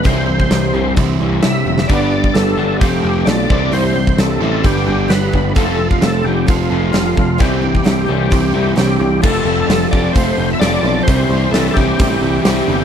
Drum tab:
CC |----------------|----------------|----------------|----------------|
HH |o---o---o---o---|o---o---o---o---|o---o---o---o---|o---o---o---o---|
SD |----o-------o--o|----o-------o---|----o-------o---|----o-------o---|
T1 |--------------o-|----------------|----------------|----------------|
BD |o--o----o-------|o--o----o-----o-|---o----o-----o-|o--o----o-----o-|

CC |----------------|x---------------|----------------|
HH |o---o---o---o---|----o---o---o---|o---o---o---o---|
SD |----o-------o---|----o-------o---|----o-------o---|
T1 |----------------|----------------|----------------|
BD |o--o----o-------|o-----o-o-------|o-----o-o-------|